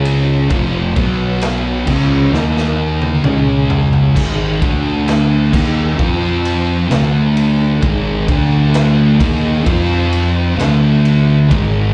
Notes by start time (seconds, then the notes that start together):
Already playing: C#2 C#3 G#3 C#4 G#4 C#5
0.05 ride
0.49 F1 F2 C3 F3 F4 C5 C6, kick, ride
0.95 B1 B2 F#3 B3 F#4 B4 B5, kick, ride
1.41 snare, ride
1.87 C#2 C#3 G#3 C#4 F4 C5 C6, kick, crash
2.32 D#2 D#3 A#3 D#4 A#4 A#5, snare
2.57 snare
3.02 high tom
3.24 C#2 C#3 G#3 C#4 G#4 G#5, mid tom
3.70 floor tom
3.93 floor tom
4.14 G#1 G#2 D#3 G#3 D#4, kick, crash
4.59 D2 D3 A3 D4 A4 A5, kick, ride
5.08 snare, ride
5.50 D#2 D#3 A#3 D#4 G#4 G#5, kick, crash
5.55 D#4
5.97 F2 F3 C4 F4 C5 C6, kick
6.45 ride
6.89 D2 D3 A3 D4 A4 A5, snare, ride
7.37 ride
7.81 G#1 G#2 D#3 G#3 D#4 G#4 G#5, kick, ride
8.27 D2 D3 A3 D4 A4 A5, kick, ride
8.74 snare, ride
9.19 D#2 D#3 A#3 D#4 G#4 G#5, kick, ride
9.64 F2 F3 C4 F4 C5 C6, kick, ride
10.13 ride
10.57 D2 D3 A3 D4 A4 A5, snare, ride
11.05 ride
11.49 G#1 G#2 D#3 G#3 D#4 G#4 G#5, kick, ride